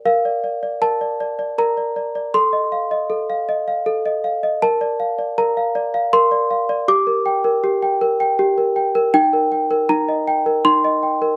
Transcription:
\new Staff \with { instrumentName = "Celesta" } { \time 3/4 \key bes \major \tempo 4 = 79 << { f''4 a''4 bes''4 | c'''2~ c'''8 r8 | a''4 bes''4 c'''4 | d'''2~ d'''8 r8 |
\key ees \lydian g''4 bes''4 c'''4 | } \\ { bes'16 d''16 d''16 d''16 bes'16 d''16 d''16 d''16 bes'16 d''16 d''16 d''16 | a'16 ees''16 f''16 ees''16 a'16 f''16 ees''16 f''16 a'16 ees''16 f''16 ees''16 | bes'16 d''16 f''16 d''16 bes'16 f''16 d''16 f''16 bes'16 d''16 f''16 d''16 | g'16 bes'16 g''16 bes'16 g'16 g''16 bes'16 g''16 g'16 bes'16 g''16 bes'16 |
ees'16 bes'16 g''16 bes'16 ees'16 ees''16 g''16 bes'16 ees'16 ees''16 g''16 bes'16 | } >> }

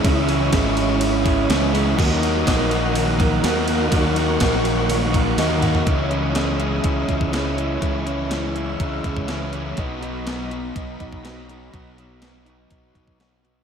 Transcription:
<<
  \new Staff \with { instrumentName = "String machine" } { \time 4/4 \key cis \dorian \tempo 4 = 123 << { dis'''1~ | dis'''1 | cis'''1 | dis'''1 |
e'''1 | b''1~ | b''1 | } \\ { <cis'' e''>1 | <ais' fis''>1~ | <ais' fis''>1 | <cis'' e''>1~ |
<cis'' e''>1 | <dis'' ais''>1~ | <dis'' ais''>1 | } >> }
  \new Staff \with { instrumentName = "Overdriven electric guitar" } { \time 4/4 \key cis \dorian <cis e gis cis' e'>8 <gis cis' e'>8 <e gis cis' e'>8 <gis cis' e'>4. <e gis cis' e'>8 <gis cis' e'>8 | <dis ais dis' fis'>8 <ais dis' fis'>8 <dis ais dis' fis'>8 <ais dis' fis'>4. <dis ais dis' fis'>8 <ais dis' fis'>8 | <dis ais dis' fis'>8 <ais dis' fis'>8 <dis ais dis' fis'>8 <ais dis' fis'>4. <dis ais dis' fis'>8 <ais dis' fis'>8 | <cis e gis cis' e'>8 <gis cis' e'>8 <cis e gis cis' e'>8 <gis cis' e'>8 <e gis cis' e'>8 <gis cis' e'>8 <cis e gis cis' e'>8 <gis cis' e'>8 |
<cis e gis cis' e'>8 <gis cis' e'>8 <cis e gis cis' e'>8 <gis cis' e'>8 <e gis cis' e'>8 <gis cis' e'>8 <cis e gis cis' e'>8 <gis cis' e'>8 | <b, fis b dis' fis'>8 <b dis' fis'>8 <b, fis b dis' fis'>8 <b dis' fis'>8 <fis b dis' fis'>8 <b dis' fis'>8 <b, fis b dis' fis'>8 <b dis' fis'>8 | <b, fis b dis' fis'>8 <b dis' fis'>8 <b, fis b dis' fis'>8 <b dis' fis'>8 <fis b dis' fis'>8 <b dis' fis'>8 <b, fis b dis' fis'>8 <b dis' fis'>8 | }
  \new Staff \with { instrumentName = "Overdriven electric guitar" } { \clef bass \time 4/4 \key cis \dorian <cis gis cis' e'>8 <gis cis' e'>8 <cis gis cis' e'>4. <gis cis' e'>8 <cis gis cis' e'>8 <gis cis' e'>8 | <dis fis ais dis'>8 <fis ais dis'>8 <dis fis ais dis'>4. <fis ais dis'>8 <dis fis ais dis'>8 <fis ais dis'>8 | <dis fis ais dis'>8 <fis ais dis'>8 <dis fis ais dis'>4. <fis ais dis'>8 <dis fis ais dis'>8 <fis ais dis'>8 | <cis e gis cis'>8 <e gis cis'>8 <cis e gis cis'>8 <e gis cis'>4. <cis e gis cis'>8 <e gis cis'>8 |
<cis e gis cis'>8 <e gis cis'>8 <cis e gis cis'>8 <e gis cis'>4. <cis e gis cis'>8 <e gis cis'>8 | <b, fis b dis'>8 <fis b dis'>8 <b, fis b dis'>8 <fis b dis'>4. <b, fis b dis'>8 <fis b dis'>8 | <b, fis b dis'>8 <fis b dis'>8 <b, fis b dis'>8 <fis b dis'>4. <b, fis b dis'>8 <fis b dis'>8 | }
  \new Staff \with { instrumentName = "Clean electric guitar" } { \clef bass \time 4/4 \key cis \dorian <e gis>8 e8 gis8 e8 e8 gis4 gis8 | fis8 fis8 ais8 fis8 fis8 ais8 dis'8 ais8 | fis8 fis8 ais8 fis8 fis8 ais8 dis'8 ais8 | e8 e8 gis4 gis4 e8 e8 |
e8 e8 gis4 gis4 e8 e8 | fis8 fis4 dis'4 dis'8 fis8 fis8 | fis8 fis4 dis'4 dis'8 fis8 fis8 | }
  \new Staff \with { instrumentName = "Fingered electric bass" } { \clef bass \time 4/4 \key cis \dorian cis,4 gis,,2 cis,4 | dis,4 ais,,2 dis,4 | dis,4 ais,,2 dis,4 | cis,2 cis,8 cis,4. |
cis,2 cis,8 cis,4. | b,,2 b,,8 b,,4. | b,,2 b,,8 b,,4. | }
  \new DrumStaff \with { instrumentName = "Drums" } \drummode { \time 4/4 <bd cymr>8 cymr8 <bd cymr sn>8 cymr8 cymr8 <bd cymr>8 <cymr sn>8 <cymr sn>8 | <cymc bd>8 cymr8 <bd cymr sn>8 cymr8 cymr8 <bd cymr>8 <cymr sn>8 cymr8 | <bd cymr>8 cymr8 <bd cymr sn>8 cymr8 cymr8 <bd cymr>8 <cymr sn>16 tommh16 <cymr toml>16 tomfh16 | <hh bd>8 hh8 <hh sn>8 hh8 <hh bd>8 <hh bd sn>16 bd16 <hh sn>8 hh8 |
<hh bd>8 hh8 <hh sn>8 hh8 <hh bd>8 <hh bd sn>16 bd16 <hh sn>8 hh8 | <hh bd>8 hh8 <hh sn>8 hh8 <hh bd>8 <hh bd>16 bd16 <hh sn>8 hh8 | <hh bd>8 hh8 <hh sn>8 hh8 <hh bd>8 <hh bd>16 bd16 <hh sn>8 hh8 | }
>>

